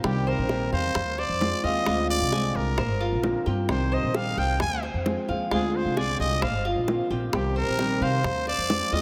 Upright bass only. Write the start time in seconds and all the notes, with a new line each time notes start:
0.04 C2
0.38 A#1
0.72 E2
0.95 F2
1.07 D2
1.29 F2
1.64 D#2
1.86 D2
2.21 C2
2.55 C2
2.78 A#1
2.89 G1
3.12 A#1
3.46 G2
3.69 C2
4.03 A#1
4.37 C2
4.60 F2
4.71 D2
4.94 F2
5.29 D#2
5.51 D2
5.85 C2
6.19 C2
6.42 A#1
6.54 G1
6.76 A#1
7.10 A#1
7.33 C2
7.67 A#1
8.01 C3
8.24 F2
8.35 D2
8.58 F2
8.92 D#2